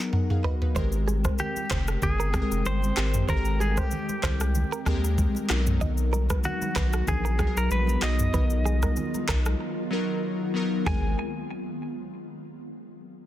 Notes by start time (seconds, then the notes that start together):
Already playing: F#3 B3 D#4 G#4 A#4
0.13 A#4 F#5, mid tom
0.30 G#4 F5, mid tom
0.44 F#4 B4 D#5, floor tom
0.62 D#4 B4, floor tom
0.75 G#1 D#3 G#3 C4 G4 A#4 C5 G5, kick, low conga, shaker
0.92 shaker
1.08 G#4, high conga, shaker
1.24 C5, kick, cross-stick, high conga, shaker
1.38 G4, low conga, shaker
1.56 high conga, shaker
1.71 F1 C5, kick, cross-stick, clap, low conga, shaker
1.88 cross-stick, shaker
2.02 G1 G#4, kick, low conga, shaker
2.20 A#4, shaker
2.33 G#3 C4 G#4 G5, kick, cross-stick, high conga, shaker
2.42 A#4
2.51 F1, shaker
2.65 G1 C5, high conga, shaker
2.82 high conga, shaker
2.96 G#1 G#3 C4 G4 A#4, cross-stick, clap, shaker
3.14 mid tom, shaker
3.28 G#1 G#3 C4 G4 A4 A#4 C5, kick, low conga, shaker
3.37 A#4
3.45 shaker
3.60 G#4, high conga, shaker
3.77 G4 C5, kick, cross-stick, high conga, shaker
3.91 low conga, shaker
4.09 high conga, shaker
4.23 C2 C5, kick, cross-stick, clap, low conga, shaker
4.40 cross-stick, shaker
4.55 low conga, shaker
4.72 A#4, shaker
4.85 D#2 G#3 C4 G4 G#4 A#4, kick, cross-stick, high conga, shaker
5.04 shaker
5.18 kick, high conga, shaker
5.35 high conga, shaker
5.49 B1 F#3 B3 D#4 F#4 A#4, cross-stick, clap, shaker
5.67 mid tom, shaker
5.81 D#5, kick, low conga, shaker
5.98 shaker
6.13 A#4, high conga, shaker
6.30 B4, kick, cross-stick, high conga, shaker
6.44 F#4, low conga, shaker
6.62 high conga, shaker
6.76 B1 B4, kick, cross-stick, clap, low conga, shaker
6.93 cross-stick, shaker
7.08 A#1 G#4, kick, low conga, shaker
7.25 A#4, shaker
7.38 F#3 B3 D#4 G#4, kick, cross-stick, high conga, shaker
7.47 A#4
7.57 B1 A#4, shaker
7.71 A#1 B4, high conga, shaker
7.87 high conga, shaker
8.01 B1 F#3 B3 D#4 F4 F#4 A#4 D#5, cross-stick, clap, shaker
8.19 mid tom, shaker
8.33 B1 F#3 B3 D#4 A#4 B4, kick, low conga, shaker
8.50 shaker
8.65 G#4, high conga, shaker
8.82 A#4, kick, cross-stick, high conga, shaker
8.96 low conga, shaker
9.14 high conga, shaker
9.29 B1 A#4, kick, cross-stick, clap, low conga, shaker
9.46 cross-stick, high conga, shaker
9.91 F#3 B3 D#4 A#4
10.54 F#3 B3 D#4 A#4
10.87 G#1 G#3 C4 G#4 A#4 G#5, kick, floor tom, high conga